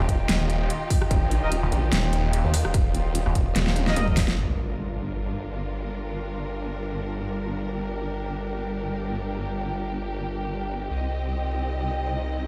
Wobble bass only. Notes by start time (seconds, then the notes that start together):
0.09 D#1
1.11 D#1
1.22 A#1
1.42 D#1
1.72 A#1
2.44 D#2
2.65 D#1
3.35 D#1
3.96 D#1
4.37 G1
10.90 C2